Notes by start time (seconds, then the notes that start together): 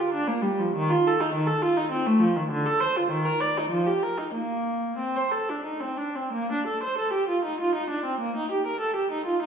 0.00 F4
0.14 D4
0.28 A#3
0.42 G3
0.59 F3
0.75 D#3
0.90 F4
1.07 A4
1.21 D#4
1.34 D#3
1.47 A4
1.62 F4
1.77 D#4
1.92 C4
2.06 A3
2.20 F3
2.36 D#3
2.51 D3
2.66 A4
2.81 C5
2.96 F4
3.10 D#3
3.25 A#4
3.40 D5
3.58 D#4
3.70 F3
3.87 G4
4.03 A#4
4.18 D#4
4.33 A#3
4.98 C4
5.16 C5
5.31 A4
5.49 D4
5.65 D#4
5.80 C4
5.97 D4
6.16 C4
6.33 A#3
6.52 D4
6.67 A4
6.83 C5
6.98 A4
7.13 G4
7.28 F4
7.45 D#4
7.61 F4
7.75 D#4
7.90 D4
8.05 C4
8.20 A#3
8.36 D#4
8.52 G4
8.67 A#4
8.80 A4
8.96 G4
9.11 D#4
9.26 F4
9.42 D#4